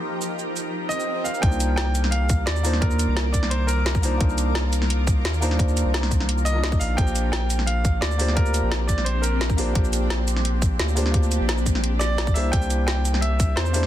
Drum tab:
HH |----------------|x-x-x-x-x-x-x-o-|x-x-x-x-x-x-x-o-|x-x-x-x-x-x-x-o-|
SH |--x-x-x---xx--xx|-xx---x---x--xx-|-xx---x---x--xx-|-xx---x---x--xx-|
SD |----------------|----o--o----o--o|----o--o----o---|----o--o----o--o|
BD |----------------|o---------o-----|o-----o------o--|o---------o-----|

HH |x-x-x-x-x-x-x-o-|x-x-x-x-x-x-x-o-|x-x-x-x-x-x-x-o-|x-x-x-x-x-x-x-o-|
SH |-xx---x--xx--xx-|-xx---x---x--xx-|-xx---x---x--xx-|-xx---x---x--xx-|
SD |----oo-o----o---|----o--o----o--o|----o--o----o---|----o--o----o--o|
BD |o-----o------o--|o---------o-----|o-----o------o--|o---------o-----|

HH |x-x-x-x-x-x-x-o-|x-x-x-x-x-x-x-o-|
SH |-xx--xx---x--xx-|-xx---x---x--xx-|
SD |----o--o--o-o---|----o--o----o--o|
BD |o-----o------o--|o---------o-----|